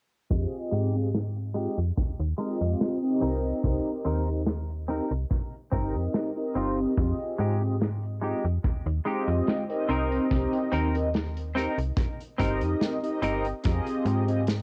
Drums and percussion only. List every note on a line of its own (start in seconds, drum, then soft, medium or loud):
0.31 kick loud
0.31 closed hi-hat medium
0.52 closed hi-hat soft
0.73 closed hi-hat medium
0.95 closed hi-hat soft
1.15 snare loud
1.15 closed hi-hat medium
1.36 closed hi-hat soft
1.55 closed hi-hat medium
1.77 closed hi-hat medium
1.97 kick loud
1.97 closed hi-hat medium
2.20 closed hi-hat soft
2.39 closed hi-hat medium
2.61 closed hi-hat medium
2.80 snare loud
2.80 closed hi-hat medium
3.04 closed hi-hat soft
3.22 closed hi-hat medium
3.44 closed hi-hat soft
3.64 kick loud
3.64 closed hi-hat medium
3.85 closed hi-hat medium
4.04 closed hi-hat medium
4.28 closed hi-hat soft
4.46 snare loud
4.46 closed hi-hat medium
4.70 closed hi-hat medium
4.89 snare soft
4.89 closed hi-hat medium
5.11 closed hi-hat soft
5.30 kick loud
5.30 closed hi-hat medium
5.52 closed hi-hat medium
5.72 kick medium
5.72 closed hi-hat loud
5.95 closed hi-hat medium
6.14 snare loud
6.14 closed hi-hat medium
6.37 closed hi-hat medium
6.56 closed hi-hat medium
6.79 closed hi-hat soft
6.97 kick loud
6.97 closed hi-hat medium
7.19 closed hi-hat soft
7.39 closed hi-hat medium
7.61 closed hi-hat soft
7.81 snare loud
7.81 closed hi-hat medium
8.03 closed hi-hat medium
8.23 closed hi-hat medium
8.45 closed hi-hat medium
8.64 kick loud
8.64 closed hi-hat medium
8.87 closed hi-hat medium
9.07 closed hi-hat loud
9.28 closed hi-hat medium
9.47 snare loud
9.47 closed hi-hat medium
9.70 closed hi-hat medium
9.90 closed hi-hat medium
10.12 closed hi-hat medium
10.31 kick loud
10.31 closed hi-hat medium
10.53 closed hi-hat soft
10.73 closed hi-hat medium
10.95 closed hi-hat medium
11.14 snare loud
11.14 closed hi-hat medium
11.37 closed hi-hat medium
11.57 snare soft
11.57 closed hi-hat medium
11.78 closed hi-hat medium
11.97 kick loud
11.97 closed hi-hat medium
12.20 closed hi-hat soft
12.40 kick medium
12.40 closed hi-hat loud
12.61 closed hi-hat soft
12.81 snare loud
12.81 closed hi-hat medium
13.03 closed hi-hat soft
13.22 closed hi-hat medium
13.45 closed hi-hat medium
13.64 kick loud
13.64 closed hi-hat medium
13.87 closed hi-hat medium
14.06 closed hi-hat medium
14.28 closed hi-hat soft
14.47 snare loud
14.47 closed hi-hat loud